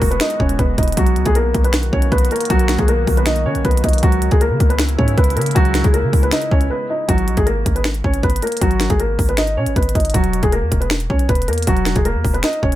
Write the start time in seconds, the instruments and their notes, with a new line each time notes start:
Already playing: ambient pad E3 G#3 B3 F#4
0.02 808-style bass E1, kick, open hi-hat
0.11 felt piano B3 B4, closed hi-hat
0.20 felt piano D#4 D#5, finger snap, snare, closed hi-hat
0.30 closed hi-hat
0.39 808-style bass E1, felt piano C#4 C#5, kick
0.49 closed hi-hat
0.59 808-style bass E1, felt piano B3 B4, kick, closed hi-hat
0.78 808-style bass E1, felt piano D#4 D#5, kick, closed hi-hat
0.83 closed hi-hat
0.88 closed hi-hat
0.92 closed hi-hat
0.97 808-style bass B1, ambient pad D#3 A#3 F#4, felt piano F#3 F#4, kick, closed hi-hat
1.07 closed hi-hat
1.16 808-style bass C#2, closed hi-hat
1.26 808-style bass B1, felt piano G#3 G#4, kick, closed hi-hat
1.35 felt piano A#3 A#4, closed hi-hat
1.54 808-style bass B1, kick, closed hi-hat
1.64 felt piano B3 B4, closed hi-hat
1.73 finger snap, snare, closed hi-hat
1.83 closed hi-hat
1.93 808-style bass B1, felt piano C#4 C#5, kick
2.02 closed hi-hat
2.12 808-style bass B1, felt piano B3 B4, kick, closed hi-hat
2.18 closed hi-hat
2.25 closed hi-hat
2.31 felt piano A#3 A#4, closed hi-hat
2.36 closed hi-hat
2.41 closed hi-hat
2.45 closed hi-hat
2.50 808-style bass B1, felt piano F#3 F#4, kick, closed hi-hat
2.59 closed hi-hat
2.68 finger snap, snare, closed hi-hat
2.78 808-style bass B1, felt piano G#3 G#4, kick, closed hi-hat
2.88 felt piano A#3 A#4, closed hi-hat
3.07 808-style bass B1, kick, open hi-hat
3.17 felt piano B3 B4, closed hi-hat
3.26 felt piano D#4 D#5, finger snap, snare, closed hi-hat
3.36 closed hi-hat
3.46 808-style bass D#3, felt piano C#4 C#5
3.55 808-style bass B1, closed hi-hat
3.65 808-style bass B1, felt piano B3 B4, kick, closed hi-hat
3.71 closed hi-hat
3.77 closed hi-hat
3.84 808-style bass B1, felt piano D#4 D#5, kick, closed hi-hat
3.89 closed hi-hat
3.93 closed hi-hat
3.98 closed hi-hat
4.03 808-style bass C#2, ambient pad C#3 G#3 E4, felt piano F#3 F#4, kick, closed hi-hat
4.12 closed hi-hat
4.22 closed hi-hat
4.31 808-style bass C#2, felt piano G#3 G#4, kick, closed hi-hat
4.41 felt piano A#3 A#4, closed hi-hat
4.51 808-style bass C#3
4.60 808-style bass C#2, kick, closed hi-hat
4.70 felt piano B3 B4, closed hi-hat
4.79 finger snap, snare, closed hi-hat
4.89 closed hi-hat
4.98 808-style bass G#2, felt piano C#4 C#5, kick
5.08 closed hi-hat
5.18 808-style bass C#2, felt piano B3 B4, kick, closed hi-hat
5.24 closed hi-hat
5.30 closed hi-hat
5.36 808-style bass C#3, felt piano A#3 A#4, closed hi-hat
5.42 closed hi-hat
5.46 closed hi-hat
5.51 closed hi-hat
5.55 808-style bass C#2, felt piano F#3 F#4, kick, closed hi-hat
5.65 closed hi-hat
5.74 finger snap, snare, closed hi-hat
5.84 808-style bass C#2, felt piano G#3 G#4, kick, closed hi-hat
5.94 felt piano A#3 A#4, closed hi-hat
6.04 808-style bass C#3
6.13 808-style bass C#2, kick, open hi-hat
6.23 felt piano B3 B4, closed hi-hat
6.31 felt piano D#4 D#5, finger snap, snare, closed hi-hat
6.42 closed hi-hat
6.51 808-style bass C#2, felt piano C#4 C#5, kick
6.61 closed hi-hat
6.70 felt piano B3 B4
6.90 felt piano D#4 D#5
7.08 808-style bass G#1, felt piano F#3 F#4, kick, closed hi-hat
7.18 closed hi-hat
7.28 808-style bass A#1, closed hi-hat
7.37 808-style bass G#1, felt piano G#3 G#4, kick, closed hi-hat
7.46 felt piano A#3 A#4, closed hi-hat
7.66 808-style bass G#1, kick, closed hi-hat
7.76 felt piano B3 B4, closed hi-hat
7.84 finger snap, snare, closed hi-hat
7.94 closed hi-hat
8.04 808-style bass G#1, felt piano C#4 C#5, kick
8.14 closed hi-hat
8.23 808-style bass G#1, felt piano B3 B4, kick, closed hi-hat
8.30 closed hi-hat
8.36 closed hi-hat
8.42 felt piano A#3 A#4, closed hi-hat
8.47 closed hi-hat
8.52 closed hi-hat
8.57 closed hi-hat
8.61 808-style bass G#1, felt piano F#3 F#4, kick, closed hi-hat
8.71 closed hi-hat
8.80 finger snap, snare, closed hi-hat
8.90 808-style bass G#1, felt piano G#3 G#4, kick, closed hi-hat
9.00 felt piano A#3 A#4, closed hi-hat
9.19 808-style bass G#1, kick, open hi-hat
9.29 felt piano B3 B4, closed hi-hat
9.37 felt piano D#4 D#5, finger snap, snare, closed hi-hat
9.47 closed hi-hat
9.57 808-style bass B2, felt piano C#4 C#5
9.66 808-style bass G#1, closed hi-hat
9.76 808-style bass G#1, felt piano B3 B4, kick, closed hi-hat
9.83 closed hi-hat
9.89 closed hi-hat
9.95 808-style bass G#1, felt piano D#4 D#5, kick, closed hi-hat
10.00 closed hi-hat
10.05 closed hi-hat
10.10 closed hi-hat
10.14 808-style bass E1, felt piano F#3 F#4, kick, closed hi-hat
10.24 closed hi-hat
10.33 closed hi-hat
10.43 808-style bass E1, felt piano G#3 G#4, kick, closed hi-hat
10.52 felt piano A#3 A#4, closed hi-hat
10.62 808-style bass E2
10.72 808-style bass E1, kick, closed hi-hat
10.80 felt piano B3 B4, closed hi-hat
10.90 finger snap, snare, closed hi-hat
11.00 closed hi-hat
11.10 808-style bass B1, felt piano C#4 C#5, kick
11.19 closed hi-hat
11.29 808-style bass E1, felt piano B3 B4, kick, closed hi-hat
11.35 closed hi-hat
11.42 closed hi-hat
11.48 808-style bass E2, felt piano A#3 A#4, closed hi-hat
11.53 closed hi-hat
11.58 closed hi-hat
11.62 closed hi-hat
11.67 808-style bass E1, felt piano F#3 F#4, kick, closed hi-hat
11.77 closed hi-hat
11.85 finger snap, snare, closed hi-hat
11.96 808-style bass E1, felt piano G#3 G#4, kick, closed hi-hat
12.05 felt piano A#3 A#4, closed hi-hat
12.15 808-style bass E2
12.24 808-style bass E1, kick, open hi-hat
12.34 felt piano B3 B4, closed hi-hat
12.43 felt piano D#4 D#5, finger snap, snare, closed hi-hat
12.53 closed hi-hat
12.62 808-style bass E1, felt piano C#4 C#5, kick
12.72 closed hi-hat